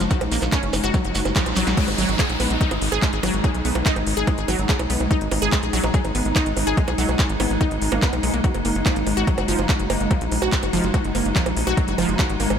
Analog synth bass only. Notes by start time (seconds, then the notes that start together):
0.00 F#1
0.21 A#1
0.32 A#1
0.42 A#1
0.63 F#1
0.73 F#1
0.84 F#1
1.05 F#1
1.15 F#1
1.25 F#1
1.46 A#1
1.57 A#1
1.67 A#1
1.88 G#1
1.98 G#1
2.09 G#1
2.30 A#1
2.40 A#1
2.50 A#1
2.71 G#1
2.82 G#1
2.92 G#1
3.13 G#1
3.23 G#1
3.34 G#1
3.54 B1
3.65 B1
3.75 B1
3.96 G#1
4.07 G#1
4.17 G#1
4.38 G#1
4.48 G#1
4.59 G#1
4.79 B1
4.90 B1
5.00 B1
5.21 G#1
5.32 G#1
5.42 G#1
5.63 A#1
5.73 A#1
5.84 A#1
6.04 G#1
6.15 G#1
6.25 G#1
6.46 G#1
6.57 G#1
6.67 G#1
6.88 B1
6.98 B1
7.09 B1
7.29 G#1
7.40 G#1
7.50 G#1
7.71 G#1
7.82 G#1
7.92 G#1
8.13 B1
8.23 B1
8.34 B1
8.55 F#1
8.65 F#1
8.75 F#1
8.96 G#1
9.07 G#1
9.17 G#1
9.38 F#1
9.48 F#1
9.59 F#1
9.79 F#1
9.90 F#1
10.00 F#1
10.21 A#1
10.32 A#1
10.42 A#1
10.63 F#1
10.73 F#1
10.84 F#1
11.04 F#1
11.15 F#1
11.25 F#1
11.46 A#1
11.57 A#1
11.67 A#1
11.88 F#1
11.98 F#1
12.09 F#1
12.29 G#1
12.40 G#1
12.50 G#1